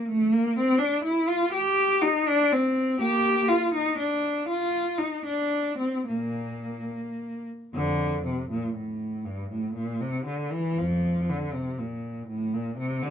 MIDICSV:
0, 0, Header, 1, 2, 480
1, 0, Start_track
1, 0, Key_signature, -2, "major"
1, 0, Tempo, 490196
1, 80, Time_signature, 6, 3, 24, 8
1, 4881, Tempo, 551978
1, 7281, Key_signature, -1, "major"
1, 7281, Tempo, 501253
1, 12411, End_track
2, 0, Start_track
2, 0, Title_t, "Cello"
2, 0, Program_c, 0, 42
2, 82, Note_on_c, 0, 57, 107
2, 314, Note_off_c, 0, 57, 0
2, 334, Note_on_c, 0, 58, 119
2, 559, Note_off_c, 0, 58, 0
2, 568, Note_on_c, 0, 60, 112
2, 766, Note_on_c, 0, 62, 111
2, 790, Note_off_c, 0, 60, 0
2, 1012, Note_off_c, 0, 62, 0
2, 1018, Note_on_c, 0, 64, 101
2, 1254, Note_off_c, 0, 64, 0
2, 1257, Note_on_c, 0, 65, 112
2, 1496, Note_on_c, 0, 67, 127
2, 1498, Note_off_c, 0, 65, 0
2, 1968, Note_off_c, 0, 67, 0
2, 1970, Note_on_c, 0, 63, 111
2, 2218, Note_off_c, 0, 63, 0
2, 2228, Note_on_c, 0, 62, 127
2, 2467, Note_off_c, 0, 62, 0
2, 2471, Note_on_c, 0, 60, 110
2, 2934, Note_on_c, 0, 58, 103
2, 2938, Note_on_c, 0, 67, 127
2, 2945, Note_off_c, 0, 60, 0
2, 3384, Note_off_c, 0, 58, 0
2, 3407, Note_on_c, 0, 65, 105
2, 3410, Note_off_c, 0, 67, 0
2, 3657, Note_off_c, 0, 65, 0
2, 3661, Note_on_c, 0, 63, 107
2, 3899, Note_on_c, 0, 62, 98
2, 3900, Note_off_c, 0, 63, 0
2, 4372, Note_off_c, 0, 62, 0
2, 4393, Note_on_c, 0, 65, 109
2, 4873, Note_off_c, 0, 65, 0
2, 4876, Note_on_c, 0, 63, 91
2, 5106, Note_off_c, 0, 63, 0
2, 5114, Note_on_c, 0, 62, 94
2, 5569, Note_off_c, 0, 62, 0
2, 5572, Note_on_c, 0, 60, 83
2, 5812, Note_off_c, 0, 60, 0
2, 5827, Note_on_c, 0, 58, 75
2, 5832, Note_on_c, 0, 46, 63
2, 6523, Note_off_c, 0, 46, 0
2, 7023, Note_off_c, 0, 58, 0
2, 7277, Note_on_c, 0, 41, 67
2, 7281, Note_on_c, 0, 50, 94
2, 7732, Note_off_c, 0, 41, 0
2, 7735, Note_off_c, 0, 50, 0
2, 7773, Note_on_c, 0, 48, 71
2, 8005, Note_on_c, 0, 46, 73
2, 8011, Note_off_c, 0, 48, 0
2, 8241, Note_off_c, 0, 46, 0
2, 8243, Note_on_c, 0, 45, 62
2, 8718, Note_off_c, 0, 45, 0
2, 8723, Note_on_c, 0, 43, 70
2, 8967, Note_off_c, 0, 43, 0
2, 8978, Note_on_c, 0, 45, 75
2, 9200, Note_on_c, 0, 46, 72
2, 9211, Note_off_c, 0, 45, 0
2, 9444, Note_off_c, 0, 46, 0
2, 9446, Note_on_c, 0, 48, 77
2, 9688, Note_on_c, 0, 50, 70
2, 9692, Note_off_c, 0, 48, 0
2, 9926, Note_off_c, 0, 50, 0
2, 9934, Note_on_c, 0, 52, 81
2, 10173, Note_off_c, 0, 52, 0
2, 10183, Note_on_c, 0, 41, 69
2, 10186, Note_on_c, 0, 53, 85
2, 10630, Note_off_c, 0, 41, 0
2, 10665, Note_off_c, 0, 53, 0
2, 10680, Note_on_c, 0, 50, 77
2, 10910, Note_off_c, 0, 50, 0
2, 10910, Note_on_c, 0, 48, 71
2, 11144, Note_off_c, 0, 48, 0
2, 11150, Note_on_c, 0, 46, 68
2, 11622, Note_off_c, 0, 46, 0
2, 11623, Note_on_c, 0, 45, 79
2, 11853, Note_off_c, 0, 45, 0
2, 11870, Note_on_c, 0, 46, 80
2, 12097, Note_off_c, 0, 46, 0
2, 12103, Note_on_c, 0, 48, 79
2, 12324, Note_off_c, 0, 48, 0
2, 12334, Note_on_c, 0, 50, 82
2, 12411, Note_off_c, 0, 50, 0
2, 12411, End_track
0, 0, End_of_file